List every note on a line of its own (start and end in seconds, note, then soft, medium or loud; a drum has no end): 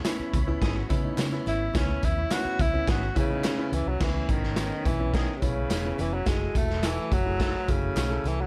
0.00 3.98 E4 medium
0.00 3.98 C#5 medium
0.00 3.97 B5 medium
0.04 0.36 B3 medium
0.04 0.36 C#4 medium
0.04 0.36 E4 loud
0.04 snare loud
0.04 clap medium
0.04 closed hi-hat loud
0.04 tambourine medium
0.19 muted fingered electric bass stroke soft
0.33 0.54 C#2 medium
0.33 kick loud
0.33 closed hi-hat medium
0.33 tambourine soft
0.33 high conga medium
0.33 low conga medium
0.47 0.78 B3 medium
0.47 0.79 C#4 medium
0.47 0.79 E4 loud
0.62 0.83 G#1 loud
0.62 0.76 G#4 medium
0.62 kick medium
0.62 snare loud
0.62 closed hi-hat medium
0.62 muted conga soft
0.76 0.89 F#4 medium
0.89 1.11 C#3 medium
0.89 1.21 B3 loud
0.89 1.21 C#4 medium
0.89 1.03 E4 medium
0.89 1.21 E4 loud
0.89 kick medium
0.89 closed hi-hat medium
0.89 tambourine medium
0.89 muted conga soft
1.03 1.18 D#4 medium
1.03 high conga medium
1.18 1.39 C#3 loud
1.18 1.32 C#4 medium
1.18 snare loud
1.18 clap medium
1.18 closed hi-hat medium
1.18 tambourine medium
1.18 muted conga soft
1.32 1.63 B3 medium
1.32 1.72 B3 medium
1.32 1.63 C#4 medium
1.32 1.64 E4 medium
1.32 high conga medium
1.46 1.68 G#1 medium
1.46 1.78 E4 medium
1.46 closed hi-hat medium
1.46 low conga medium
1.74 1.96 C#2 loud
1.74 2.16 B3 medium
1.74 2.16 C#4 medium
1.74 2.06 C#4 medium
1.74 2.17 E4 medium
1.74 kick loud
1.74 snare loud
1.74 closed hi-hat medium
1.74 tambourine medium
1.74 muted conga soft
1.74 low conga medium
1.88 high conga medium
2.03 2.24 D#2 medium
2.03 2.34 E4 medium
2.03 kick medium
2.03 closed hi-hat medium
2.03 tambourine medium
2.17 high conga soft
2.30 2.62 B3 medium
2.30 2.62 C#4 medium
2.30 2.62 E4 medium
2.30 2.63 F#4 loud
2.30 snare loud
2.30 clap medium
2.30 closed hi-hat loud
2.30 tambourine medium
2.45 muted fingered electric bass stroke soft
2.59 2.80 C#2 medium
2.59 2.89 E4 loud
2.59 kick loud
2.59 closed hi-hat medium
2.59 tambourine soft
2.59 high conga medium
2.59 low conga medium
2.73 3.05 B3 medium
2.73 3.05 C#4 medium
2.73 3.05 E4 medium
2.87 3.08 G#1 loud
2.87 3.16 F#4 medium
2.87 3.03 G#4 medium
2.87 kick loud
2.87 snare loud
2.87 closed hi-hat medium
2.87 tambourine soft
2.87 muted conga soft
3.03 3.16 F#4 medium
3.15 3.48 C#3 loud
3.15 3.76 C#3 medium
3.15 3.46 B3 medium
3.15 3.47 C#4 medium
3.15 3.47 E4 medium
3.15 3.31 E4 medium
3.15 kick medium
3.15 closed hi-hat medium
3.15 tambourine medium
3.31 3.45 D#4 medium
3.31 high conga medium
3.44 3.59 C#4 medium
3.44 snare loud
3.44 clap medium
3.44 closed hi-hat medium
3.44 tambourine medium
3.57 3.89 B3 medium
3.57 3.99 B3 medium
3.57 3.89 C#4 medium
3.57 3.90 E4 loud
3.57 high conga medium
3.72 3.83 C#2 medium
3.72 3.90 E3 medium
3.72 closed hi-hat medium
3.72 tambourine soft
3.72 muted conga soft
3.72 low conga medium
3.86 3.97 C2 medium
3.86 4.05 F#3 medium
4.00 4.22 C#2 loud
4.00 4.32 E3 medium
4.00 4.42 B3 medium
4.00 4.42 C#4 medium
4.00 6.25 C#4 medium
4.00 4.42 E4 medium
4.00 6.25 C#5 medium
4.00 6.25 B5 medium
4.00 kick loud
4.00 snare loud
4.00 crash medium
4.00 tambourine medium
4.00 muted conga soft
4.00 low conga medium
4.15 high conga medium
4.29 4.71 G#1 medium
4.29 4.88 D#3 medium
4.29 kick loud
4.29 closed hi-hat medium
4.29 tambourine medium
4.43 snare soft
4.56 4.88 B3 medium
4.56 4.88 C#4 medium
4.56 4.89 D#4 medium
4.56 snare loud
4.56 clap medium
4.56 closed hi-hat loud
4.56 tambourine medium
4.56 muted conga soft
4.85 5.27 B1 medium
4.85 5.15 E3 medium
4.85 kick loud
4.85 closed hi-hat medium
4.85 tambourine soft
4.85 high conga medium
4.85 low conga medium
4.99 5.31 B3 medium
4.99 5.31 C#4 medium
4.99 5.31 E4 medium
5.14 5.38 D#3 medium
5.14 5.32 E3 medium
5.14 5.32 C#4 medium
5.14 5.32 G#4 medium
5.14 kick medium
5.14 snare loud
5.14 closed hi-hat medium
5.36 5.45 C3 medium
5.41 5.63 B1 medium
5.41 6.02 C#3 medium
5.41 5.73 B3 medium
5.41 5.73 C#4 medium
5.41 5.73 E4 medium
5.41 kick medium
5.41 closed hi-hat medium
5.41 tambourine medium
5.56 high conga medium
5.70 5.91 E1 medium
5.70 snare loud
5.70 clap medium
5.70 closed hi-hat medium
5.70 tambourine medium
5.70 muted conga soft
5.84 6.15 B3 medium
5.84 6.16 C#4 medium
5.84 6.16 E4 medium
5.84 high conga medium
5.98 6.20 F1 medium
5.98 6.15 E3 medium
5.98 closed hi-hat medium
5.98 tambourine soft
5.98 muted conga soft
5.98 low conga medium
6.14 6.29 F#3 medium
6.26 6.48 F#1 medium
6.26 6.59 G#3 loud
6.26 6.68 A3 medium
6.26 6.68 E4 medium
6.26 8.47 F#4 medium
6.26 6.68 F#4 medium
6.26 8.47 E5 medium
6.26 kick loud
6.26 snare medium
6.26 closed hi-hat medium
6.26 tambourine medium
6.26 muted conga soft
6.26 low conga medium
6.40 high conga medium
6.54 6.97 E1 medium
6.54 6.87 A3 medium
6.54 kick loud
6.54 closed hi-hat medium
6.54 tambourine medium
6.54 muted conga soft
6.70 snare soft
6.82 7.15 E3 loud
6.82 7.14 A3 medium
6.82 7.14 E4 medium
6.82 7.15 A4 medium
6.82 snare loud
6.82 clap medium
6.82 closed hi-hat loud
6.82 tambourine medium
6.82 muted conga soft
7.12 7.54 F#1 medium
7.12 7.72 F#3 loud
7.12 kick loud
7.12 closed hi-hat medium
7.12 tambourine soft
7.12 high conga medium
7.12 low conga medium
7.25 7.57 A3 medium
7.25 7.57 E4 medium
7.25 7.57 G#4 medium
7.39 7.64 F#3 medium
7.39 7.64 E4 medium
7.39 7.64 A4 medium
7.39 kick medium
7.39 snare loud
7.39 closed hi-hat medium
7.39 muted conga soft
7.67 7.89 F#1 medium
7.67 8.29 C#3 loud
7.67 7.99 A3 medium
7.67 7.99 E4 medium
7.67 7.99 F#4 medium
7.67 kick loud
7.67 closed hi-hat medium
7.67 tambourine medium
7.82 high conga medium
7.96 8.17 B1 medium
7.96 snare medium
7.96 clap medium
7.96 closed hi-hat medium
7.96 tambourine medium
8.10 8.41 A3 medium
8.10 8.41 E4 medium
8.10 8.42 A4 medium
8.10 high conga soft
8.24 8.45 C2 medium
8.24 8.43 E3 medium
8.24 closed hi-hat medium
8.24 muted conga soft
8.24 low conga medium
8.41 8.47 F#3 medium